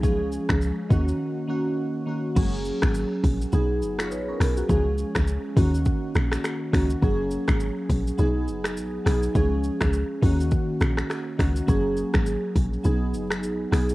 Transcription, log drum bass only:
X:1
M:4/4
L:1/16
Q:"Swing 16ths" 1/4=103
K:F#
V:1 name="Log drum bass" clef=bass
C,,3 C,,2 z D,,2 z8 | F,,,3 G,,,2 z A,,,2 B,,,2 F,,,2 A,,,2 B,,,2 | C,,3 C,,2 z D,,3 z A,,,2 z2 C,,2 | F,,,3 G,,,2 z A,,,2 B,,,2 F,,,2 A,,,2 B,,,2 |
C,,3 C,,2 z D,,3 z A,,,2 z2 C,,2 | F,,,3 G,,,2 z A,,,2 B,,,2 F,,,2 A,,,2 B,,,2 |]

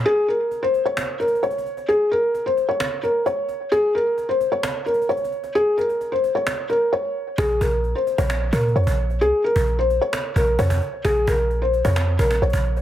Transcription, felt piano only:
X:1
M:4/4
L:1/16
Q:1/4=131
K:Bbm
V:1 name="Felt piano"
A2 B3 c2 d3 B2 d4 | A2 B3 c2 d3 B2 d4 | A2 B3 c2 d3 B2 d4 | A2 B3 c2 d3 B2 d4 |
A2 B3 c2 d3 B2 d4 | A2 B3 c2 d3 B2 d4 | A2 B3 c2 d3 B2 d4 |]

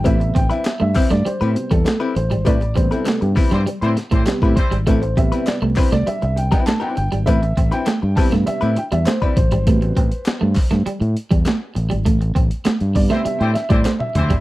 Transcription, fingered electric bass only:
X:1
M:4/4
L:1/16
Q:1/4=100
K:Am
V:1 name="Fingered electric bass" clef=bass
A,,,2 A,,, z2 G,, z G,, z A,, z E,, z2 A,,, ^G,,, | A,,,2 A,,, z2 G,, z G,, z A,, z A,, z A,, z ^G,,, | A,,,2 A,,, z2 C,, z C,, z C,,2 z3 G,,, ^G,,, | A,,,2 A,,, z2 G,, z G,, z A,, z E,, z2 A,,, ^G,,, |
A,,,2 A,,, z2 G,, z G,, z A,, z E,, z2 A,,, ^G,,, | A,,,2 A,,, z2 G,,2 z2 A,, z A,, z2 D,, ^G,,, |]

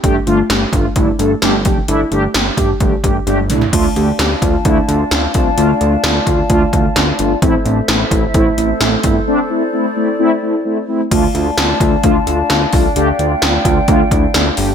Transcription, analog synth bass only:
X:1
M:4/4
L:1/8
Q:1/4=130
K:Dm
V:1 name="Analog synth bass" clef=bass
G,,, G,,, G,,, G,,, G,,, G,,, G,,, F,,, | G,,, G,,, G,,, G,,, G,,, G,,, G,,, C,, | D,, D,, D,, D,, D,, D,, D,, C,, | D,, D,, D,, D,, D,, D,, D,, G,,, |
A,,, A,,, A,,, A,,, A,,, A,,, A,,, G,,, | z8 | D,, D,, D,, D,, D,, D,, D,, C,, | D,, D,, D,, D,, D,, D,, D,, G,,, |]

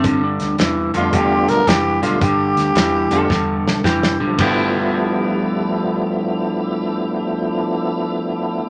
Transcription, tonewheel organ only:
X:1
M:4/4
L:1/8
Q:"Swing" 1/4=110
K:Gmix
V:1 name="Tonewheel organ"
z3 [G,A,B,DF]3 z [G,A,B,DF] | z3 [G,A,B,DF] z4 | [F,A,B,DE]8- | [F,A,B,DE]8 |]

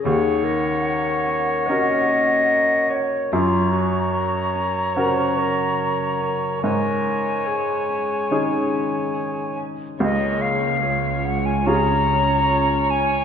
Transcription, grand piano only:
X:1
M:4/4
L:1/8
Q:1/4=72
K:Db
V:1 name="Grand piano"
E,,4 [DGB]4 | G,,4 [DGB]4 | A,,4 [DEA]4 | D,,4 [DFA]4 |]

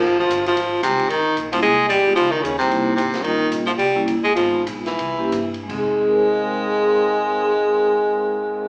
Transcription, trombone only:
X:1
M:4/4
L:1/8
Q:"Swing" 1/4=218
K:Fm
V:1 name="Trombone"
F F2 F3 C2 | E2 z F A2 G2 | F E D C3 C2 | E2 z F G2 z A |
F2 z =E4 z | A8- | A8 |]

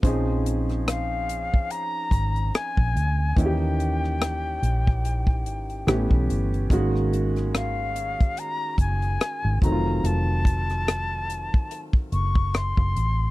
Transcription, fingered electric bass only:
X:1
M:4/4
L:1/16
Q:"Swing 16ths" 1/4=72
K:Bbm
V:1 name="Fingered electric bass" clef=bass
B,,,6- B,,, z3 A,,,2 z B,,, =D,,2 | E,,6 B,,,4 A,,,2 =A,,, =B,,, =G,,,2 | A,,,6- A,,, z3 G,,,2 z A,,, F,,,2 | F,,,6- F,,, z3 G,,,3 G,,, =A,,,2 |]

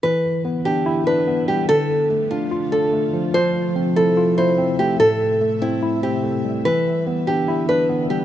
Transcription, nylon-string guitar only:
X:1
M:4/4
L:1/8
Q:1/4=145
K:Ephr
V:1 name="Nylon-string guitar"
B2 z G2 B2 G | A2 z F2 A3 | c2 z A2 c2 G | A2 z E2 G3 |
B2 z G2 B2 G |]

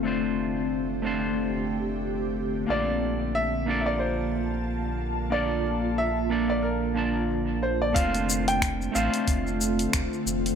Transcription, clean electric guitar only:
X:1
M:4/4
L:1/8
Q:"Swing 16ths" 1/4=91
K:F
V:1 name="Clean electric guitar"
[A,CDFc]3 [A,CDFc]4- [A,CDFc] | [B,DFAd]3 [B,DFAd]4- [B,DFAd] | [B,DFAd]3 [B,DFAd]2 [B,DFda]3 | [A,CDFc]3 [A,CDFc]4- [A,CDFc] |]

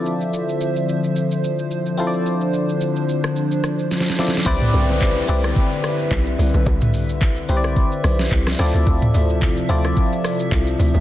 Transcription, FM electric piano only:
X:1
M:4/4
L:1/8
Q:"Swing 16ths" 1/4=109
K:C
V:1 name="FM electric piano"
[CEFAd]6- [CEFAd] [CEFAcd]- | [CEFAcd]6- [CEFAcd] [CEFAd] | [CEGBd]2 z [CEGBd]3 z2 | z3 [CEGBcd]3 z [CEFAd]- |
[CEFAd]2 z [CEFAd]3 z2 |]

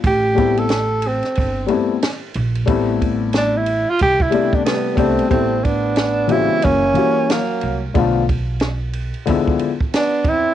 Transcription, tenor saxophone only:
X:1
M:4/4
L:1/16
Q:"Swing 16ths" 1/4=91
K:Am
V:1 name="Tenor saxophone"
G3 A3 C4 z6 | z4 D E2 F G E2 D B,2 C2 | C2 D4 E2 ^C4 ^A,3 z | z12 D2 E2 |]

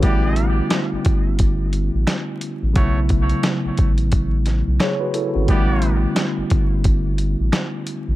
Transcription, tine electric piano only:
X:1
M:4/4
L:1/16
Q:"Swing 16ths" 1/4=88
K:Bphr
V:1 name="Tine electric piano"
[^CF] z12 z3 | z12 [^G^c] [FB] [EA] [^CF]- | [^CF] z12 z3 |]
V:2 name="Tine electric piano"
[D,G,A,B,E]16 | [^C,F,A,B,E]16 | [D,G,A,B,E]16 |]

